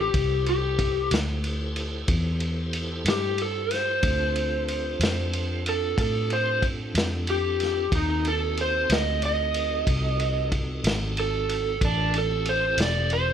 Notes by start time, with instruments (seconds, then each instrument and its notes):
Already playing: fingered electric bass A1, tonewheel organ C4 E4 G4 A4
0.01 electric slide guitar G4
0.14 fingered electric bass C2, tonewheel organ E4 G4 A4 C5, kick, ride
0.46 electric slide guitar G4, ride
0.79 kick, ride
1.11 fingered electric bass D2, snare, ride
1.44 ride
1.76 ride
2.08 fingered electric bass E2, kick, ride
2.40 ride
2.73 ride
3.05 fingered electric bass G2, snare, ride
3.09 electric slide guitar G4
3.38 electric slide guitar A4, ride
3.71 electric slide guitar C5, snare, ride
4.02 fingered electric bass D2, tonewheel organ C4 D4 F4 A4, kick, ride
4.36 ride
4.68 ride
5.00 fingered electric bass F2, snare, ride
5.33 ride
5.66 electric slide guitar A4, ride
5.98 fingered electric bass A2, electric slide guitar A4, kick, ride
6.30 electric slide guitar C5, ride
6.62 kick, ride
6.94 fingered electric bass F2, snare, ride
7.27 electric slide guitar G4, ride
7.60 snare, ride
7.91 fingered electric bass D#2, tonewheel organ C4 D#4 F#4 A4, kick, ride
7.95 electric slide guitar D#4
8.25 electric slide guitar A4, ride
8.57 electric slide guitar C5, ride
8.90 fingered electric bass D2, electric slide guitar D#5, snare, ride
9.22 electric slide guitar D#5, ride
9.54 ride
9.87 fingered electric bass C2, kick, ride
10.20 ride
10.52 kick, ride
10.84 fingered electric bass G#1, snare, ride
11.17 electric slide guitar A4, ride
11.49 ride
11.81 fingered electric bass A1, electric slide guitar D4, tonewheel organ F4 G#4 A#4 C#5, kick, ride
12.14 tonewheel organ C4 E4 G4 A4, ride
12.18 electric slide guitar A4
12.46 electric slide guitar C5, ride
12.77 fingered electric bass E1, snare, ride
12.82 electric slide guitar D5
13.10 electric slide guitar C5, ride